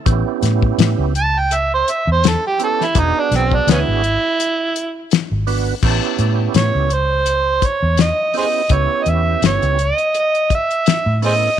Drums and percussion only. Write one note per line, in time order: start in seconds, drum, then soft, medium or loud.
0.06 kick loud
0.06 closed hi-hat medium
0.43 snare soft
0.43 closed hi-hat medium
0.62 kick medium
0.79 snare loud
0.79 closed hi-hat medium
1.15 closed hi-hat medium
1.51 closed hi-hat medium
1.88 closed hi-hat medium
2.24 snare loud
2.24 closed hi-hat medium
2.60 closed hi-hat medium
2.81 snare soft
2.95 kick loud
2.95 closed hi-hat medium
3.32 snare soft
3.32 closed hi-hat medium
3.52 kick medium
3.68 snare loud
3.68 closed hi-hat medium
4.04 closed hi-hat medium
4.40 closed hi-hat medium
4.76 closed hi-hat medium
5.11 snare loud
5.11 closed hi-hat medium
5.47 open hi-hat medium
5.83 kick loud
5.83 crash loud
6.03 closed hi-hat soft
6.18 closed hi-hat medium
6.54 snare loud
6.54 closed hi-hat medium
6.90 closed hi-hat medium
7.26 closed hi-hat medium
7.62 kick medium
7.62 closed hi-hat medium
7.97 snare loud
7.97 closed hi-hat medium
8.34 open hi-hat medium
8.69 kick loud
8.69 closed hi-hat medium
9.06 closed hi-hat medium
9.42 snare loud
9.42 closed hi-hat medium
9.62 closed hi-hat soft
9.79 closed hi-hat medium
9.98 closed hi-hat soft
10.15 closed hi-hat medium
10.35 closed hi-hat soft
10.50 kick medium
10.50 closed hi-hat medium
10.71 closed hi-hat soft
10.86 snare loud
10.86 closed hi-hat medium
11.22 open hi-hat medium